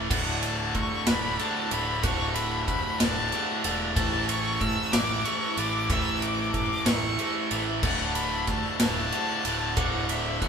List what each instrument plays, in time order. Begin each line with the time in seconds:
Already playing: overdriven electric guitar A3
0.09 picked electric bass D1, distorted electric guitar D2 A2 D3, harmonium D3 D4 F#4 A4 A5, violin F#5, glockenspiel A6, kick, crash
0.42 violin A5, ride
0.75 picked electric bass D2, violin C#6, glockenspiel E6, kick, ride
1.07 picked electric bass D1, distorted electric guitar D2 A2 D3, violin B5, glockenspiel F#6, snare, ride
1.38 distorted electric guitar D2 A2 D3, violin A5, ride
1.70 picked electric bass D1, distorted electric guitar D2 A2 D3, violin B5, glockenspiel A6, ride
2.03 picked electric bass D1, distorted electric guitar D2 A2 D3, violin C#6, glockenspiel F#6, kick, ride
2.34 violin B5, ride
2.66 picked electric bass D2, violin B5, glockenspiel F#6, kick, ride
2.99 picked electric bass D1, distorted electric guitar D2 A2 D3, violin A5, glockenspiel F#6, snare, ride
3.32 distorted electric guitar D2 A2 D3, ride
3.64 picked electric bass E1, distorted electric guitar D2 A2 D3, glockenspiel A6, ride
3.96 picked electric bass A1, distorted electric guitar A2 E3 A3, harmonium C#4 E4, violin A5, glockenspiel A6, kick, ride
4.29 violin C#6, ride
4.60 picked electric bass A2, violin E6, glockenspiel E6, kick, ride
4.92 picked electric bass A1, distorted electric guitar A2 E3 A3, violin D6, glockenspiel F#6, snare, ride
5.24 distorted electric guitar A2 E3 A3, violin C#6, ride
5.57 picked electric bass A1, distorted electric guitar A2 E3 A3, violin D6, glockenspiel A6, ride
5.90 picked electric bass A1, distorted electric guitar A2 E3 A3, violin E6, glockenspiel C#7, kick, ride
6.22 violin D6, ride
6.53 picked electric bass A2, violin D6, glockenspiel E6, kick, ride
6.86 picked electric bass A1, distorted electric guitar A2 E3 A3, violin C#6, glockenspiel E6, snare, ride
7.18 distorted electric guitar A2 E3 A3, ride
7.50 picked electric bass A1, distorted electric guitar A2 E3 A3, glockenspiel A6, ride
7.82 picked electric bass D1, distorted electric guitar D2 A2 D3, harmonium D3 D4 F#4 A5, violin F#5, glockenspiel A6, kick, crash
8.14 violin B5, ride
8.47 picked electric bass D2, violin A5, glockenspiel E6, kick, ride
8.80 picked electric bass D1, distorted electric guitar D2 A2 D3, violin A5, glockenspiel F#6, snare, ride
9.12 distorted electric guitar D2 A2 D3, ride
9.45 picked electric bass D1, distorted electric guitar D2 A2 D3, glockenspiel A6, ride
9.77 picked electric bass D1, distorted electric guitar D2 A2 D3, violin F#5, glockenspiel D6, kick, ride
10.09 violin E5, ride
10.42 picked electric bass D2, violin F#5, glockenspiel F#6, kick, ride